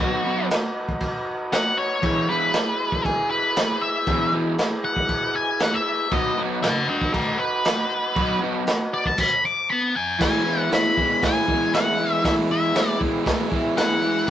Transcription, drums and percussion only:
0.00 kick loud
0.51 snare loud
0.51 crash medium
0.89 kick medium
1.00 kick medium
1.00 crash medium
1.52 snare loud
1.52 crash medium
2.03 kick loud
2.03 crash medium
2.53 snare loud
2.53 crash medium
2.92 kick medium
3.05 kick medium
3.05 crash medium
3.56 snare loud
3.56 crash medium
4.07 kick loud
4.07 crash medium
4.58 snare loud
4.58 crash medium
4.96 kick medium
5.09 kick medium
5.09 crash medium
5.60 snare loud
5.60 crash medium
6.12 kick loud
6.12 crash medium
6.63 snare loud
6.63 crash medium
7.01 kick medium
7.14 kick medium
7.14 crash medium
7.65 snare loud
7.65 crash medium
8.16 kick loud
8.16 crash medium
8.67 snare loud
8.67 crash medium
9.06 kick medium
9.18 kick loud
9.18 crash loud
10.20 kick loud
10.20 snare loud
10.20 crash loud
10.72 snare loud
10.72 open hi-hat medium
10.97 kick medium
11.22 kick loud
11.22 snare loud
11.22 open hi-hat medium
11.48 kick medium
11.74 snare loud
11.74 open hi-hat medium
12.24 kick loud
12.24 snare loud
12.24 open hi-hat medium
12.75 snare loud
12.75 open hi-hat medium
13.01 kick medium
13.26 kick loud
13.26 snare loud
13.26 open hi-hat medium
13.52 kick medium
13.77 snare loud
13.77 open hi-hat medium

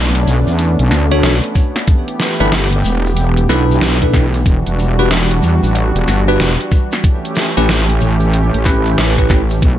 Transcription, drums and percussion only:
0.15 closed hi-hat medium
0.27 shaker loud
0.47 shaker medium
0.59 closed hi-hat medium
0.59 shaker soft
0.79 closed hi-hat medium
0.91 snare soft
0.91 shaker loud
1.12 shaker medium
1.23 snare loud
1.23 closed hi-hat medium
1.23 shaker soft
1.44 closed hi-hat medium
1.55 kick loud
1.55 shaker medium
1.76 snare medium
1.76 closed hi-hat soft
1.76 shaker medium
1.87 kick loud
1.87 closed hi-hat medium
1.87 shaker soft
2.08 closed hi-hat medium
2.20 snare medium
2.20 shaker loud
2.40 closed hi-hat soft
2.40 shaker medium
2.52 snare loud
2.52 closed hi-hat medium
2.52 shaker soft
2.73 closed hi-hat medium
2.85 shaker loud
3.06 shaker soft
3.17 closed hi-hat medium
3.17 shaker soft
3.37 closed hi-hat medium
3.49 snare soft
3.49 shaker loud
3.71 shaker medium
3.81 snare loud
3.81 closed hi-hat medium
3.81 shaker soft
4.02 kick medium
4.02 closed hi-hat medium
4.13 kick loud
4.13 snare medium
4.13 shaker loud
4.34 closed hi-hat soft
4.34 shaker medium
4.46 kick loud
4.46 closed hi-hat medium
4.46 shaker soft
4.67 closed hi-hat medium
4.79 shaker medium
4.99 closed hi-hat soft
4.99 shaker medium
5.11 snare loud
5.11 closed hi-hat medium
5.11 shaker soft
5.31 closed hi-hat medium
5.43 shaker medium
5.63 shaker medium
5.75 closed hi-hat medium
5.75 shaker soft
5.96 closed hi-hat medium
6.08 snare soft
6.08 shaker loud
6.28 shaker medium
6.39 snare loud
6.39 closed hi-hat medium
6.39 shaker soft
6.61 closed hi-hat medium
6.72 kick loud
6.72 shaker loud
6.92 snare soft
6.92 closed hi-hat soft
6.92 shaker medium
7.03 kick loud
7.03 closed hi-hat medium
7.03 shaker soft
7.25 closed hi-hat medium
7.35 snare medium
7.35 shaker loud
7.57 closed hi-hat soft
7.57 shaker medium
7.69 snare loud
7.69 closed hi-hat medium
7.69 shaker soft
7.90 closed hi-hat medium
8.01 shaker medium
8.20 shaker medium
8.33 closed hi-hat medium
8.33 shaker soft
8.54 closed hi-hat medium
8.65 kick medium
8.65 snare soft
8.65 shaker medium
8.85 shaker medium
8.98 snare loud
8.98 closed hi-hat medium
8.98 shaker soft
9.18 kick medium
9.18 closed hi-hat medium
9.29 kick loud
9.29 snare medium
9.29 shaker medium
9.50 closed hi-hat soft
9.50 shaker medium
9.61 kick loud
9.61 closed hi-hat medium
9.61 shaker soft

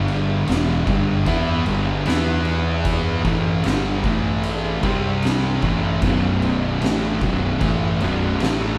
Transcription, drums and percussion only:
0.08 crash medium
0.48 snare loud
0.48 crash medium
0.87 kick loud
0.87 crash medium
1.26 kick loud
1.26 crash medium
1.66 crash medium
2.06 snare loud
2.06 crash medium
2.45 crash medium
2.85 kick loud
2.85 crash loud
3.25 kick loud
3.25 crash medium
3.64 snare loud
3.64 crash medium
4.04 kick loud
4.04 crash medium
4.43 crash medium
4.83 kick loud
4.83 crash medium
5.22 snare loud
5.22 crash medium
5.62 kick loud
5.62 crash medium
6.02 kick loud
6.02 crash medium
6.42 crash medium
6.82 snare loud
6.82 crash medium
7.21 kick loud
7.21 crash medium
7.61 kick loud
7.61 crash medium
8.00 crash medium
8.40 snare loud
8.40 crash medium

